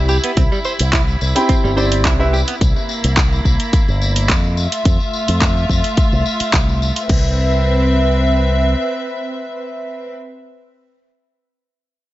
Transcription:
0.00 0.17 C2 medium
0.00 1.32 E4 medium
0.00 2.57 E4 medium
0.00 1.32 G4 medium
0.00 1.33 E5 medium
0.00 1.33 B5 medium
0.09 0.16 G4 loud
0.09 tambourine medium
0.23 0.30 B3 medium
0.23 closed hi-hat medium
0.23 tambourine soft
0.37 0.48 C2 medium
0.37 0.41 C4 medium
0.37 kick loud
0.37 closed hi-hat soft
0.37 tambourine medium
0.52 0.58 G3 medium
0.52 tambourine soft
0.64 0.72 C5 medium
0.64 tambourine medium
0.79 1.16 C2 medium
0.79 closed hi-hat medium
0.79 tambourine soft
0.92 1.00 E4 medium
0.92 kick loud
0.92 clap loud
0.92 closed hi-hat soft
0.92 tambourine medium
1.08 tambourine soft
1.21 1.32 C2 medium
1.21 tambourine medium
1.35 1.74 C4 medium
1.35 1.74 E4 medium
1.35 1.74 G4 medium
1.35 1.74 G5 medium
1.35 1.74 B5 medium
1.35 closed hi-hat medium
1.35 tambourine soft
1.49 1.54 C4 medium
1.49 kick loud
1.49 closed hi-hat soft
1.49 tambourine soft
1.64 2.05 G1 medium
1.64 1.71 G3 medium
1.64 tambourine soft
1.76 2.16 C4 medium
1.76 2.16 E4 medium
1.76 2.16 G4 medium
1.76 1.84 C5 medium
1.76 2.16 D5 loud
1.76 2.16 B5 medium
1.76 tambourine medium
1.92 closed hi-hat medium
1.92 tambourine soft
2.05 2.42 C2 medium
2.05 2.12 E4 medium
2.05 kick loud
2.05 clap loud
2.05 closed hi-hat soft
2.05 tambourine soft
2.19 2.32 C4 medium
2.19 2.32 E4 medium
2.19 2.26 E4 medium
2.19 2.32 G4 medium
2.19 2.32 B4 medium
2.19 2.32 E5 medium
2.19 tambourine soft
2.33 2.41 G4 medium
2.33 tambourine medium
2.48 2.55 B3 medium
2.48 closed hi-hat medium
2.48 tambourine soft
2.61 2.72 C2 medium
2.61 4.55 A#3 medium
2.61 4.55 E4 medium
2.61 kick loud
2.61 closed hi-hat soft
2.61 tambourine medium
2.76 tambourine soft
2.89 tambourine medium
3.04 3.40 C2 medium
3.04 closed hi-hat medium
3.04 tambourine soft
3.17 kick loud
3.17 clap loud
3.17 closed hi-hat soft
3.17 tambourine soft
3.33 tambourine soft
3.45 3.56 C2 medium
3.45 kick medium
3.45 tambourine medium
3.60 closed hi-hat medium
3.60 tambourine soft
3.73 muted fingered electric bass stroke soft
3.73 kick loud
3.73 closed hi-hat soft
3.73 tambourine medium
3.88 4.31 G1 medium
3.88 tambourine soft
4.02 tambourine loud
4.16 closed hi-hat medium
4.16 tambourine soft
4.29 4.66 F2 medium
4.29 kick loud
4.29 clap loud
4.29 closed hi-hat soft
4.29 tambourine medium
4.44 tambourine soft
4.57 7.07 A3 medium
4.57 7.07 F4 medium
4.57 7.07 E5 medium
4.57 tambourine medium
4.72 closed hi-hat medium
4.72 tambourine soft
4.85 4.96 F2 medium
4.85 kick loud
4.85 closed hi-hat soft
4.85 tambourine medium
5.00 tambourine soft
5.13 tambourine medium
5.28 5.64 F2 medium
5.28 closed hi-hat medium
5.28 tambourine soft
5.42 kick loud
5.42 clap loud
5.42 closed hi-hat soft
5.42 tambourine soft
5.57 tambourine soft
5.70 5.80 F2 medium
5.70 kick medium
5.70 tambourine medium
5.84 closed hi-hat medium
5.84 tambourine soft
5.97 kick loud
5.97 closed hi-hat soft
5.97 tambourine soft
6.12 6.22 C2 medium
6.12 tambourine soft
6.26 tambourine medium
6.40 muted fingered electric bass stroke soft
6.40 closed hi-hat medium
6.40 tambourine soft
6.53 6.90 C2 medium
6.53 kick loud
6.53 clap loud
6.53 closed hi-hat soft
6.53 tambourine soft
6.69 tambourine soft
6.82 tambourine medium
6.96 closed hi-hat medium
6.96 tambourine soft
7.09 8.74 C2 medium
7.09 10.09 C4 medium
7.09 10.09 B4 medium
7.09 10.09 E5 medium
7.09 kick loud
7.09 crash medium

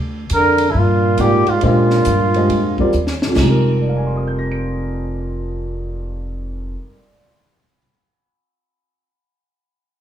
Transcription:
0.00 0.29 D2 medium
0.30 0.73 F2 medium
0.30 hi-hat pedal soft
0.30 ride medium
0.34 0.72 D3 medium
0.34 0.73 A#4 loud
0.58 ride medium
0.70 0.77 G2 soft
0.70 0.79 E4 medium
0.74 1.17 G2 medium
0.74 1.21 A#2 medium
0.74 1.22 F4 medium
1.18 1.45 G#2 medium
1.18 1.51 A#2 medium
1.18 1.86 A#3 medium
1.18 1.86 D#4 soft
1.18 1.51 G4 medium
1.18 1.86 G#4 medium
1.18 1.86 D5 medium
1.18 1.86 F5 medium
1.18 hi-hat pedal soft
1.18 ride medium
1.47 1.62 G#2 medium
1.47 1.63 F4 medium
1.47 muted upright bass stroke soft
1.47 ride soft
1.61 2.90 A#2 medium
1.61 2.05 A#2 medium
1.61 2.29 D3 medium
1.61 2.29 G#3 medium
1.61 2.91 F4 medium
1.61 2.29 G4 medium
1.61 2.30 C5 medium
1.61 2.30 D#5 medium
1.61 ride medium
1.90 snare soft
2.05 2.48 G2 medium
2.05 hi-hat pedal medium
2.05 ride medium
2.34 2.76 D3 medium
2.34 2.76 G#3 medium
2.34 2.76 G4 medium
2.34 2.76 C5 soft
2.34 2.77 D#5 medium
2.34 ride soft
2.49 2.92 F2 medium
2.49 ride medium
2.78 2.92 G3 medium
2.78 2.92 C4 medium
2.78 2.93 F4 medium
2.78 2.93 A#4 soft
2.78 2.93 D5 medium
2.78 kick medium
2.93 3.35 D#2 medium
2.93 hi-hat pedal soft
3.07 snare medium
3.22 6.67 F2 medium
3.22 snare medium
3.30 6.72 F3 medium
3.35 6.74 F1 medium
3.35 6.77 G#3 medium
3.35 kick medium
3.35 snare medium
3.35 crash medium
3.40 6.82 D#4 medium
3.45 6.87 G3 medium
3.50 6.92 A#4 medium
3.82 7.20 D5 soft
3.89 7.27 F5 soft
3.97 7.35 G#5 soft
4.06 7.45 C6 soft
4.16 7.55 D#6 soft
4.27 7.66 G6 soft
4.39 7.77 A#6 soft
4.52 7.90 D7 soft

